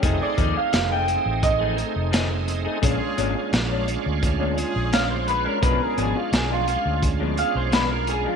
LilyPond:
<<
  \new Staff \with { instrumentName = "Clean electric guitar" } { \time 4/4 \key bes \major \tempo 4 = 86 g'16 d''8 f''8 g''8. ees''2 | r2. f''16 c''16 b'16 bes'16 | b'16 bes'16 gis'16 f'16 gis'16 f'16 f'8 r8 f''16 c''16 b'16 bes'16 gis'16 f'16 | }
  \new Staff \with { instrumentName = "Horn section" } { \time 4/4 \key bes \major <a ees' gis'>4 r4. <a ees'>8. r8. | <f' aes'>4 r4. <f' aes'>8. r8. | <b gis'>4 r4. <b gis'>8. r8. | }
  \new Staff \with { instrumentName = "Tonewheel organ" } { \time 4/4 \key bes \major <a c' ees' gis'>1 | <aes cis' d' f'>1 | <gis des' d' f'>1 | }
  \new Staff \with { instrumentName = "Clean electric guitar" } { \time 4/4 \key bes \major <f a ees' gis'>16 r16 <f a ees' gis'>16 r8 <a ees' gis'>16 r8. <f a ees' gis'>16 r8 <f a ees' gis'>16 r8 <a ees' gis'>16 | <bes, aes cis' d'>16 r16 <bes, aes cis' d'>16 r8 <aes cis' d'>16 r8. <bes, aes cis' d'>16 r8 <bes, aes cis' d'>16 r8 <aes cis' d'>16 | <b, f gis d'>16 r16 <b, f gis d'>16 r8 <f gis d'>16 r8. <b, f gis d'>16 r8 <b, f gis d'>16 r8 <f gis d'>16 | }
  \new Staff \with { instrumentName = "Fingered electric bass" } { \clef bass \time 4/4 \key bes \major f,,16 r16 ees,16 r16 f,,8. a,,4 f,,4~ f,,16 | bes,,16 r16 aes,,16 r16 bes,,8. d,4 bes,,4~ bes,,16 | b,,16 r16 gis,,16 r16 b,,8. d,4 b,,4~ b,,16 | }
  \new DrumStaff \with { instrumentName = "Drums" } \drummode { \time 4/4 <hh bd>8 <hh bd>8 <hh sn>8 hh8 <hh bd>8 hh8 <hh sn>8 hh8 | <hh bd>8 hh8 <hh sn>8 hh8 <hh bd>8 hh8 <hh sn>8 hh8 | <hh bd>8 hh8 <hh sn>8 hh8 <hh bd>8 hh8 <hh sn>8 hh8 | }
>>